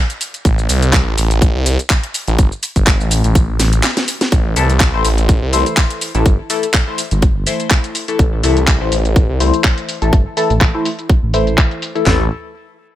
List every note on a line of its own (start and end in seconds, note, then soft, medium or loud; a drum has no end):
0.10 closed hi-hat medium
0.10 shaker soft
0.21 open hi-hat medium
0.21 shaker medium
0.34 closed hi-hat medium
0.34 shaker soft
0.45 0.68 A1 loud
0.45 kick loud
0.45 closed hi-hat medium
0.45 shaker soft
0.59 shaker soft
0.69 1.05 C2 loud
0.69 open hi-hat loud
0.69 shaker medium
0.82 closed hi-hat medium
0.82 shaker soft
0.93 kick loud
0.93 clap loud
0.93 closed hi-hat medium
0.93 shaker soft
1.07 1.16 A1 medium
1.18 1.53 A1 loud
1.18 open hi-hat medium
1.18 shaker medium
1.31 closed hi-hat medium
1.31 shaker soft
1.42 kick loud
1.42 closed hi-hat medium
1.42 shaker soft
1.55 1.77 C2 loud
1.66 open hi-hat loud
1.66 shaker medium
1.79 closed hi-hat medium
1.79 shaker soft
1.90 kick loud
1.90 clap loud
1.90 closed hi-hat medium
1.90 shaker soft
2.03 closed hi-hat medium
2.14 open hi-hat medium
2.14 shaker medium
2.28 2.37 A1 loud
2.28 closed hi-hat medium
2.28 shaker soft
2.39 2.50 G1 loud
2.39 kick loud
2.39 closed hi-hat medium
2.39 shaker soft
2.52 shaker soft
2.63 open hi-hat loud
2.63 shaker medium
2.76 2.98 G1 loud
2.76 kick medium
2.76 closed hi-hat medium
2.76 shaker soft
2.87 kick loud
2.87 clap loud
2.87 closed hi-hat medium
2.87 shaker soft
3.00 3.22 A1 loud
3.00 shaker soft
3.11 open hi-hat medium
3.11 shaker medium
3.24 3.58 A1 loud
3.24 closed hi-hat medium
3.24 shaker soft
3.35 kick loud
3.35 closed hi-hat medium
3.35 shaker soft
3.60 3.82 A1 medium
3.60 snare medium
3.60 open hi-hat loud
3.60 shaker medium
3.73 closed hi-hat medium
3.73 shaker soft
3.83 snare medium
3.83 clap loud
3.83 closed hi-hat medium
3.83 shaker soft
3.97 snare medium
3.97 closed hi-hat medium
3.97 shaker soft
4.08 open hi-hat medium
4.08 shaker medium
4.21 snare medium
4.21 closed hi-hat medium
4.21 shaker soft
4.32 4.55 A1 medium
4.32 kick loud
4.32 closed hi-hat medium
4.32 shaker soft
4.56 4.92 C2 loud
4.56 4.72 E3 loud
4.56 4.72 A3 medium
4.56 4.72 E4 medium
4.56 4.72 A4 loud
4.56 open hi-hat loud
4.56 shaker medium
4.70 closed hi-hat medium
4.70 shaker soft
4.80 kick loud
4.80 clap loud
4.80 closed hi-hat medium
4.80 shaker soft
4.94 5.03 A1 medium
4.94 5.08 E3 medium
4.94 5.08 A3 medium
4.94 5.08 E4 medium
4.94 5.08 C5 medium
5.05 5.40 A1 loud
5.05 open hi-hat medium
5.05 shaker medium
5.18 closed hi-hat medium
5.18 shaker soft
5.29 kick loud
5.29 closed hi-hat medium
5.29 shaker soft
5.42 5.64 C2 loud
5.53 6.12 E3 medium
5.53 6.12 A3 medium
5.53 6.12 E4 medium
5.53 6.12 C5 medium
5.53 open hi-hat loud
5.53 shaker medium
5.66 closed hi-hat medium
5.66 shaker soft
5.77 kick loud
5.77 clap loud
5.77 closed hi-hat medium
5.77 shaker soft
5.90 closed hi-hat medium
5.90 shaker soft
6.01 open hi-hat medium
6.01 shaker medium
6.15 6.24 A1 medium
6.15 6.29 E3 medium
6.15 6.29 A3 medium
6.15 6.29 E4 medium
6.15 6.29 A4 medium
6.15 closed hi-hat medium
6.15 shaker soft
6.26 6.37 G1 medium
6.26 kick loud
6.26 closed hi-hat medium
6.26 shaker soft
6.50 6.66 E3 loud
6.50 6.66 A3 medium
6.50 6.66 E4 medium
6.50 6.66 A4 loud
6.50 open hi-hat loud
6.50 shaker medium
6.63 closed hi-hat medium
6.63 shaker soft
6.74 kick loud
6.74 clap loud
6.74 closed hi-hat medium
6.74 shaker soft
6.87 7.01 E3 medium
6.87 7.01 A3 medium
6.87 7.01 E4 medium
6.87 7.01 C5 medium
6.98 open hi-hat loud
6.98 shaker medium
7.11 7.45 G1 loud
7.11 closed hi-hat medium
7.11 shaker soft
7.22 kick loud
7.22 closed hi-hat medium
7.22 shaker soft
7.47 8.05 E3 medium
7.47 8.05 A3 medium
7.47 8.05 E4 medium
7.47 8.05 C5 loud
7.47 open hi-hat loud
7.47 shaker medium
7.60 closed hi-hat medium
7.60 shaker soft
7.71 kick loud
7.71 clap loud
7.71 closed hi-hat medium
7.71 shaker soft
7.84 closed hi-hat medium
7.84 shaker soft
7.95 open hi-hat medium
7.95 shaker medium
8.08 8.22 E3 medium
8.08 8.22 A3 medium
8.08 8.22 E4 medium
8.08 8.22 A4 medium
8.08 closed hi-hat medium
8.08 shaker soft
8.19 8.42 A1 loud
8.19 kick loud
8.19 closed hi-hat medium
8.19 shaker soft
8.43 8.79 C2 loud
8.43 8.59 E3 medium
8.43 8.59 A3 medium
8.43 8.59 E4 medium
8.43 8.59 A4 loud
8.43 open hi-hat loud
8.43 shaker medium
8.57 closed hi-hat medium
8.57 shaker soft
8.68 kick loud
8.68 clap loud
8.68 closed hi-hat medium
8.68 shaker soft
8.81 8.90 A1 medium
8.81 8.95 E3 medium
8.81 8.95 A3 medium
8.81 8.95 E4 medium
8.81 8.95 C5 medium
8.92 9.27 A1 loud
8.92 open hi-hat loud
8.92 shaker medium
9.05 closed hi-hat soft
9.05 shaker soft
9.16 kick loud
9.16 closed hi-hat medium
9.16 shaker soft
9.29 9.51 C2 loud
9.40 9.99 E3 medium
9.40 9.99 A3 medium
9.40 9.99 E4 medium
9.40 9.99 C5 loud
9.40 open hi-hat loud
9.40 shaker medium
9.54 closed hi-hat medium
9.54 shaker soft
9.64 kick loud
9.64 clap loud
9.64 closed hi-hat medium
9.64 shaker soft
9.78 closed hi-hat medium
9.78 shaker soft
9.89 open hi-hat medium
9.89 shaker medium
10.02 10.11 A1 loud
10.02 10.16 E3 medium
10.02 10.16 A3 medium
10.02 10.16 E4 medium
10.02 10.16 A4 medium
10.02 closed hi-hat soft
10.02 shaker soft
10.13 10.24 G1 loud
10.13 kick loud
10.13 closed hi-hat medium
10.13 shaker soft
10.37 10.53 E3 loud
10.37 10.53 A3 medium
10.37 10.53 E4 medium
10.37 10.53 A4 loud
10.37 open hi-hat loud
10.37 shaker medium
10.50 10.72 A1 loud
10.50 closed hi-hat medium
10.50 shaker soft
10.61 kick loud
10.61 clap loud
10.61 closed hi-hat medium
10.61 shaker soft
10.74 10.88 E3 medium
10.74 10.88 A3 medium
10.74 10.88 E4 medium
10.74 10.88 C5 medium
10.85 open hi-hat medium
10.85 shaker medium
10.99 closed hi-hat soft
10.99 shaker soft
11.09 kick loud
11.09 closed hi-hat medium
11.09 shaker soft
11.23 11.56 A1 loud
11.34 11.92 E3 medium
11.34 11.92 A3 medium
11.34 11.92 E4 medium
11.34 11.92 C5 medium
11.34 open hi-hat loud
11.34 shaker medium
11.47 closed hi-hat medium
11.47 shaker soft
11.58 kick loud
11.58 clap loud
11.58 closed hi-hat medium
11.58 shaker soft
11.71 closed hi-hat medium
11.71 shaker soft
11.82 open hi-hat medium
11.82 shaker medium
11.95 12.05 E3 medium
11.95 12.05 A3 medium
11.95 12.05 E4 medium
11.95 12.05 A4 medium
11.95 closed hi-hat soft
11.95 shaker soft
12.06 12.29 A1 loud
12.06 12.25 E3 medium
12.06 12.25 A3 medium
12.06 12.25 E4 medium
12.06 12.25 A4 loud
12.06 snare loud
12.06 clap medium
12.06 floor tom loud